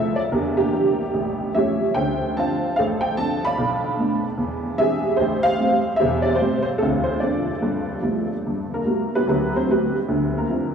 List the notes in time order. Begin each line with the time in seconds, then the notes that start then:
Already playing: F3 A3 E4 A4 C5 E5
0.16 D5
0.32 E2 D4 G4 A#4
0.57 A#3 D4 G4
0.73 E3 G3 D4
1.14 A1
1.55 F3 G3 A3 C#4 G4 C#5 E5
1.95 D2 C5 G5
2.36 F3 C4 D4 C5 F5 A5
2.76 A1 A4 C5 F5
3.01 G5
3.17 F3 C4 D4 A5
3.45 D5 F5 B5
3.58 B1
3.99 A3 B3 D4
4.38 E2
4.78 E3 G#3 C4 D4 G4 G#4 E5
5.17 A1 G4 C5 E5
5.43 C5 F5
5.60 G3 A3 C4
5.96 G4 C5 E5
6.01 E1 E2
6.22 D5
6.35 C5
6.41 G3 A3 C4
6.62 C5
6.78 D2 C4 A4
6.82 F4
7.04 C5
7.20 F3 C4 D4 F4 A4 D5
7.62 G2
8.02 F3 G3 A3 B3 E4
8.47 G2
8.74 A#3 A#4
8.85 G3 A3 B3 F#4
9.15 B3 F#4 G4 B4
9.27 D2 F#3 B3 F#4 G4 B4
9.56 C4 C5
9.68 G3 A3 B3 F#4 G4 B4
10.08 D2 D3
10.38 A#3 A#4
10.49 F3 C4 D4 E4